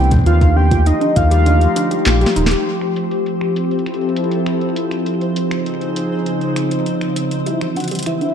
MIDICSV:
0, 0, Header, 1, 7, 480
1, 0, Start_track
1, 0, Tempo, 600000
1, 211, Time_signature, 4, 2, 24, 8
1, 6675, End_track
2, 0, Start_track
2, 0, Title_t, "Soft synth lead"
2, 0, Program_c, 0, 80
2, 0, Note_on_c, 0, 79, 108
2, 91, Note_off_c, 0, 79, 0
2, 213, Note_on_c, 0, 77, 100
2, 452, Note_on_c, 0, 79, 97
2, 464, Note_off_c, 0, 77, 0
2, 694, Note_on_c, 0, 75, 86
2, 706, Note_off_c, 0, 79, 0
2, 928, Note_off_c, 0, 75, 0
2, 933, Note_on_c, 0, 77, 98
2, 1860, Note_off_c, 0, 77, 0
2, 5972, Note_on_c, 0, 76, 91
2, 6080, Note_off_c, 0, 76, 0
2, 6212, Note_on_c, 0, 78, 88
2, 6320, Note_off_c, 0, 78, 0
2, 6453, Note_on_c, 0, 76, 86
2, 6675, Note_off_c, 0, 76, 0
2, 6675, End_track
3, 0, Start_track
3, 0, Title_t, "Synth texture"
3, 0, Program_c, 1, 99
3, 0, Note_on_c, 1, 57, 84
3, 0, Note_on_c, 1, 84, 78
3, 2132, Note_on_c, 1, 60, 79
3, 2132, Note_on_c, 1, 72, 79
3, 2140, Note_off_c, 1, 57, 0
3, 2140, Note_off_c, 1, 84, 0
3, 6675, Note_off_c, 1, 60, 0
3, 6675, Note_off_c, 1, 72, 0
3, 6675, End_track
4, 0, Start_track
4, 0, Title_t, "Synth pluck"
4, 0, Program_c, 2, 84
4, 210, Note_on_c, 2, 65, 80
4, 306, Note_off_c, 2, 65, 0
4, 330, Note_on_c, 2, 63, 77
4, 394, Note_off_c, 2, 63, 0
4, 450, Note_on_c, 2, 62, 76
4, 546, Note_off_c, 2, 62, 0
4, 569, Note_on_c, 2, 65, 74
4, 634, Note_off_c, 2, 65, 0
4, 689, Note_on_c, 2, 63, 82
4, 785, Note_off_c, 2, 63, 0
4, 809, Note_on_c, 2, 62, 77
4, 874, Note_off_c, 2, 62, 0
4, 930, Note_on_c, 2, 65, 78
4, 969, Note_off_c, 2, 65, 0
4, 1050, Note_on_c, 2, 67, 105
4, 1114, Note_off_c, 2, 67, 0
4, 1170, Note_on_c, 2, 62, 83
4, 1266, Note_off_c, 2, 62, 0
4, 1410, Note_on_c, 2, 62, 78
4, 1474, Note_off_c, 2, 62, 0
4, 1529, Note_on_c, 2, 67, 72
4, 1594, Note_off_c, 2, 67, 0
4, 1650, Note_on_c, 2, 65, 88
4, 1714, Note_off_c, 2, 65, 0
4, 1769, Note_on_c, 2, 67, 102
4, 1865, Note_off_c, 2, 67, 0
4, 1889, Note_on_c, 2, 63, 101
4, 1928, Note_off_c, 2, 63, 0
4, 2010, Note_on_c, 2, 67, 76
4, 2074, Note_off_c, 2, 67, 0
4, 5971, Note_on_c, 2, 67, 75
4, 6066, Note_off_c, 2, 67, 0
4, 6091, Note_on_c, 2, 64, 73
4, 6155, Note_off_c, 2, 64, 0
4, 6211, Note_on_c, 2, 62, 72
4, 6306, Note_off_c, 2, 62, 0
4, 6332, Note_on_c, 2, 67, 78
4, 6395, Note_off_c, 2, 67, 0
4, 6451, Note_on_c, 2, 64, 78
4, 6546, Note_off_c, 2, 64, 0
4, 6572, Note_on_c, 2, 62, 72
4, 6635, Note_off_c, 2, 62, 0
4, 6675, End_track
5, 0, Start_track
5, 0, Title_t, "Ambient pad"
5, 0, Program_c, 3, 92
5, 0, Note_on_c, 3, 52, 91
5, 0, Note_on_c, 3, 59, 77
5, 0, Note_on_c, 3, 60, 83
5, 0, Note_on_c, 3, 62, 80
5, 0, Note_on_c, 3, 67, 96
5, 211, Note_off_c, 3, 52, 0
5, 211, Note_off_c, 3, 59, 0
5, 211, Note_off_c, 3, 62, 0
5, 211, Note_on_c, 3, 53, 93
5, 447, Note_on_c, 3, 63, 86
5, 684, Note_on_c, 3, 82, 83
5, 952, Note_off_c, 3, 60, 0
5, 2131, Note_off_c, 3, 63, 0
5, 2132, Note_off_c, 3, 82, 0
5, 2335, Note_on_c, 3, 60, 88
5, 2609, Note_on_c, 3, 64, 78
5, 2793, Note_on_c, 3, 69, 82
5, 4051, Note_off_c, 3, 64, 0
5, 4051, Note_off_c, 3, 67, 0
5, 4052, Note_off_c, 3, 60, 0
5, 4052, Note_off_c, 3, 69, 0
5, 4132, Note_on_c, 3, 63, 70
5, 4227, Note_on_c, 3, 72, 83
5, 4270, Note_on_c, 3, 49, 74
5, 4292, Note_on_c, 3, 68, 78
5, 5970, Note_off_c, 3, 49, 0
5, 5971, Note_off_c, 3, 53, 0
5, 5971, Note_off_c, 3, 68, 0
5, 5971, Note_on_c, 3, 52, 93
5, 5972, Note_off_c, 3, 63, 0
5, 5972, Note_off_c, 3, 72, 0
5, 6121, Note_on_c, 3, 60, 80
5, 6378, Note_on_c, 3, 62, 90
5, 6454, Note_on_c, 3, 55, 76
5, 6675, Note_off_c, 3, 52, 0
5, 6675, Note_off_c, 3, 55, 0
5, 6675, Note_off_c, 3, 60, 0
5, 6675, Note_off_c, 3, 62, 0
5, 6675, End_track
6, 0, Start_track
6, 0, Title_t, "Analog synth bass"
6, 0, Program_c, 4, 38
6, 0, Note_on_c, 4, 36, 92
6, 139, Note_off_c, 4, 36, 0
6, 211, Note_on_c, 4, 39, 93
6, 739, Note_off_c, 4, 39, 0
6, 931, Note_on_c, 4, 39, 103
6, 1339, Note_off_c, 4, 39, 0
6, 1651, Note_on_c, 4, 34, 93
6, 1801, Note_off_c, 4, 34, 0
6, 1891, Note_on_c, 4, 27, 87
6, 2041, Note_off_c, 4, 27, 0
6, 6675, End_track
7, 0, Start_track
7, 0, Title_t, "Drums"
7, 31, Note_on_c, 9, 42, 14
7, 91, Note_off_c, 9, 42, 0
7, 91, Note_on_c, 9, 36, 110
7, 91, Note_on_c, 9, 42, 53
7, 111, Note_off_c, 9, 36, 0
7, 111, Note_on_c, 9, 36, 89
7, 131, Note_off_c, 9, 36, 0
7, 131, Note_on_c, 9, 36, 73
7, 151, Note_off_c, 9, 36, 0
7, 151, Note_on_c, 9, 36, 61
7, 171, Note_off_c, 9, 36, 0
7, 171, Note_off_c, 9, 42, 0
7, 171, Note_on_c, 9, 36, 51
7, 191, Note_off_c, 9, 36, 0
7, 191, Note_on_c, 9, 36, 40
7, 211, Note_on_c, 9, 42, 53
7, 271, Note_off_c, 9, 36, 0
7, 291, Note_off_c, 9, 42, 0
7, 331, Note_on_c, 9, 36, 103
7, 331, Note_on_c, 9, 42, 27
7, 411, Note_off_c, 9, 36, 0
7, 411, Note_off_c, 9, 42, 0
7, 571, Note_on_c, 9, 36, 115
7, 571, Note_on_c, 9, 42, 54
7, 651, Note_off_c, 9, 36, 0
7, 651, Note_off_c, 9, 42, 0
7, 690, Note_on_c, 9, 42, 51
7, 770, Note_off_c, 9, 42, 0
7, 811, Note_on_c, 9, 42, 28
7, 891, Note_off_c, 9, 42, 0
7, 930, Note_on_c, 9, 42, 90
7, 931, Note_on_c, 9, 36, 105
7, 1010, Note_off_c, 9, 42, 0
7, 1011, Note_off_c, 9, 36, 0
7, 1051, Note_on_c, 9, 42, 54
7, 1131, Note_off_c, 9, 42, 0
7, 1170, Note_on_c, 9, 42, 50
7, 1250, Note_off_c, 9, 42, 0
7, 1291, Note_on_c, 9, 42, 26
7, 1371, Note_off_c, 9, 42, 0
7, 1410, Note_on_c, 9, 42, 91
7, 1490, Note_off_c, 9, 42, 0
7, 1530, Note_on_c, 9, 42, 50
7, 1610, Note_off_c, 9, 42, 0
7, 1651, Note_on_c, 9, 38, 73
7, 1651, Note_on_c, 9, 39, 116
7, 1651, Note_on_c, 9, 42, 58
7, 1731, Note_off_c, 9, 38, 0
7, 1731, Note_off_c, 9, 39, 0
7, 1731, Note_off_c, 9, 42, 0
7, 1771, Note_on_c, 9, 42, 28
7, 1811, Note_on_c, 9, 38, 82
7, 1851, Note_off_c, 9, 42, 0
7, 1891, Note_off_c, 9, 38, 0
7, 1891, Note_on_c, 9, 42, 93
7, 1971, Note_off_c, 9, 42, 0
7, 1971, Note_on_c, 9, 38, 93
7, 2011, Note_on_c, 9, 42, 54
7, 2051, Note_off_c, 9, 38, 0
7, 2091, Note_off_c, 9, 42, 0
7, 2131, Note_on_c, 9, 42, 51
7, 2211, Note_off_c, 9, 42, 0
7, 2251, Note_on_c, 9, 26, 49
7, 2251, Note_on_c, 9, 42, 25
7, 2331, Note_off_c, 9, 26, 0
7, 2331, Note_off_c, 9, 42, 0
7, 2371, Note_on_c, 9, 42, 89
7, 2451, Note_off_c, 9, 42, 0
7, 2491, Note_on_c, 9, 42, 52
7, 2571, Note_off_c, 9, 42, 0
7, 2611, Note_on_c, 9, 42, 50
7, 2691, Note_off_c, 9, 42, 0
7, 2731, Note_on_c, 9, 26, 75
7, 2811, Note_off_c, 9, 26, 0
7, 2851, Note_on_c, 9, 42, 81
7, 2931, Note_off_c, 9, 42, 0
7, 2971, Note_on_c, 9, 42, 23
7, 3031, Note_off_c, 9, 42, 0
7, 3031, Note_on_c, 9, 42, 30
7, 3091, Note_off_c, 9, 42, 0
7, 3091, Note_on_c, 9, 26, 50
7, 3091, Note_on_c, 9, 42, 49
7, 3151, Note_off_c, 9, 42, 0
7, 3151, Note_on_c, 9, 42, 43
7, 3171, Note_off_c, 9, 26, 0
7, 3211, Note_off_c, 9, 42, 0
7, 3211, Note_on_c, 9, 42, 11
7, 3272, Note_off_c, 9, 42, 0
7, 3272, Note_on_c, 9, 42, 14
7, 3332, Note_off_c, 9, 42, 0
7, 3332, Note_on_c, 9, 42, 87
7, 3392, Note_off_c, 9, 42, 0
7, 3392, Note_on_c, 9, 42, 20
7, 3452, Note_off_c, 9, 42, 0
7, 3452, Note_on_c, 9, 42, 49
7, 3532, Note_off_c, 9, 42, 0
7, 3571, Note_on_c, 9, 26, 82
7, 3571, Note_on_c, 9, 42, 54
7, 3651, Note_off_c, 9, 26, 0
7, 3651, Note_off_c, 9, 42, 0
7, 3691, Note_on_c, 9, 42, 25
7, 3771, Note_off_c, 9, 42, 0
7, 3811, Note_on_c, 9, 42, 87
7, 3891, Note_off_c, 9, 42, 0
7, 3931, Note_on_c, 9, 26, 49
7, 3931, Note_on_c, 9, 42, 51
7, 4011, Note_off_c, 9, 26, 0
7, 4011, Note_off_c, 9, 42, 0
7, 4051, Note_on_c, 9, 42, 49
7, 4131, Note_off_c, 9, 42, 0
7, 4170, Note_on_c, 9, 42, 25
7, 4250, Note_off_c, 9, 42, 0
7, 4290, Note_on_c, 9, 42, 87
7, 4370, Note_off_c, 9, 42, 0
7, 4410, Note_on_c, 9, 26, 75
7, 4410, Note_on_c, 9, 42, 52
7, 4490, Note_off_c, 9, 26, 0
7, 4490, Note_off_c, 9, 42, 0
7, 4531, Note_on_c, 9, 42, 52
7, 4611, Note_off_c, 9, 42, 0
7, 4651, Note_on_c, 9, 42, 26
7, 4731, Note_off_c, 9, 42, 0
7, 4770, Note_on_c, 9, 42, 85
7, 4850, Note_off_c, 9, 42, 0
7, 5011, Note_on_c, 9, 42, 51
7, 5091, Note_off_c, 9, 42, 0
7, 5131, Note_on_c, 9, 42, 25
7, 5211, Note_off_c, 9, 42, 0
7, 5250, Note_on_c, 9, 26, 72
7, 5250, Note_on_c, 9, 42, 89
7, 5330, Note_off_c, 9, 26, 0
7, 5330, Note_off_c, 9, 42, 0
7, 5370, Note_on_c, 9, 42, 49
7, 5450, Note_off_c, 9, 42, 0
7, 5490, Note_on_c, 9, 42, 55
7, 5570, Note_off_c, 9, 42, 0
7, 5611, Note_on_c, 9, 26, 50
7, 5611, Note_on_c, 9, 42, 26
7, 5691, Note_off_c, 9, 26, 0
7, 5691, Note_off_c, 9, 42, 0
7, 5730, Note_on_c, 9, 42, 92
7, 5810, Note_off_c, 9, 42, 0
7, 5850, Note_on_c, 9, 42, 52
7, 5930, Note_off_c, 9, 42, 0
7, 5971, Note_on_c, 9, 42, 49
7, 6051, Note_off_c, 9, 42, 0
7, 6091, Note_on_c, 9, 26, 69
7, 6091, Note_on_c, 9, 42, 26
7, 6171, Note_off_c, 9, 26, 0
7, 6171, Note_off_c, 9, 42, 0
7, 6211, Note_on_c, 9, 42, 39
7, 6241, Note_off_c, 9, 42, 0
7, 6241, Note_on_c, 9, 42, 45
7, 6271, Note_off_c, 9, 42, 0
7, 6271, Note_on_c, 9, 42, 49
7, 6301, Note_off_c, 9, 42, 0
7, 6301, Note_on_c, 9, 42, 54
7, 6331, Note_off_c, 9, 42, 0
7, 6331, Note_on_c, 9, 42, 62
7, 6361, Note_off_c, 9, 42, 0
7, 6361, Note_on_c, 9, 42, 68
7, 6390, Note_off_c, 9, 42, 0
7, 6390, Note_on_c, 9, 42, 76
7, 6421, Note_off_c, 9, 42, 0
7, 6421, Note_on_c, 9, 42, 81
7, 6450, Note_off_c, 9, 42, 0
7, 6450, Note_on_c, 9, 26, 49
7, 6450, Note_on_c, 9, 42, 50
7, 6530, Note_off_c, 9, 26, 0
7, 6530, Note_off_c, 9, 42, 0
7, 6570, Note_on_c, 9, 42, 27
7, 6650, Note_off_c, 9, 42, 0
7, 6675, End_track
0, 0, End_of_file